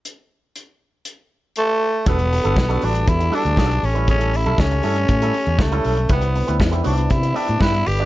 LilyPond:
<<
  \new Staff \with { instrumentName = "Clean electric guitar" } { \time 4/4 \key e \minor \tempo 4 = 119 r1 | <g d' fis' a'>8 r16 <g d' fis' a'>16 r16 <g d' fis' a'>16 <g d' fis' b'>8 r8 <g d' fis' a'>8 <g d' fis' a'>8 r16 <g cis' e' b'>16 | <g cis' e' a'>8 r16 <g cis' e' a'>16 r8 <g cis' e' a'>8 r16 <g cis' e' a'>8 r8 <g cis' e' a'>16 <g cis' e' a'>16 r16 | <b e' g' b'>8 r16 <b e' g' b'>16 r16 <b e' g' b'>16 <b e' g' d''>8 r8 <b e' g' b'>8 <b e' g' b'>8 r16 <g d' fis' d''>16 | }
  \new Staff \with { instrumentName = "French horn section" } { \time 4/4 \key e \minor << { r1 | <e b fis' g' a'>2.~ <e b fis' g' a'>8 <a cis'>8~ | <a cis'>1 | <c b d' e'>2.~ <c b d' e'>8 <a' b'>8 | } \\ { r1 | d'2.~ d'8 r8 | r1 | g1 | } >> }
  \new Staff \with { instrumentName = "Tenor saxophone" } { \time 4/4 \key e \minor r2. a4 | b4. d'8 e'8 d'4 cis'8 | cis'8 e'8 cis'2 a4 | b4 r8 d'8 e'8 d'8 e'8 g'8 | }
  \new Staff \with { instrumentName = "Fingered electric bass" } { \clef bass \time 4/4 \key e \minor r1 | e,,8. g,,16 b,,8 a,,8 e,8 r16 d,16 b,,8 a,,8~ | a,,8. b,,16 cis,8 g,8 a,8 r16 e,16 cis,8 b,,8 | c,8. d,16 e,8 c,8 c8 r16 a,16 g,8 g,,8 | }
  \new DrumStaff \with { instrumentName = "Drums" } \drummode { \time 4/4 hh4 hh4 hh4 hh4 | <hh bd>16 hh16 hho16 hh16 <bd sn>16 hh16 hho16 hh16 <hh bd>16 hh16 hho16 hh16 <bd sn>16 hh16 hho16 hh16 | <hh bd>16 hh16 hho16 hh16 <bd sn>16 hh16 hho16 hh16 <hh bd>16 hh16 hho16 hh16 <bd sn>16 hh16 hho16 hh16 | <hh bd>16 hh16 hho16 hh16 <bd sn>16 hh16 hho16 hh16 <hh bd>16 hh16 hho16 hh16 <bd sn>16 hh16 hho16 hh16 | }
>>